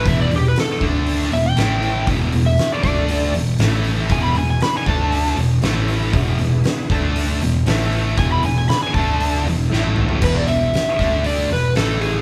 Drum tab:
CC |----------------|----------------|----------------|----------------|
HH |o-o-o-o-o-o-o-o-|o-o-o-o-o-o-o-o-|o-o-o-o-o-o-o-o-|o-o-o-o-o-o-o-o-|
SD |----o----o--o---|----o-------o---|----o----o--o---|----o-------o---|
T1 |----------------|----------------|----------------|----------------|
T2 |----------------|----------------|----------------|----------------|
FT |----------------|----------------|----------------|----------------|
BD |o-----o---------|o-----o---------|o-----o---------|o-----o---------|

CC |----------------|x---------------|
HH |o-o-o-o-o-o-----|--o-o-o-o-o-o-o-|
SD |----o----o--o---|----o-------o---|
T1 |-------------o--|----------------|
T2 |--------------o-|----------------|
FT |---------------o|----------------|
BD |o-----o---------|o-----o---------|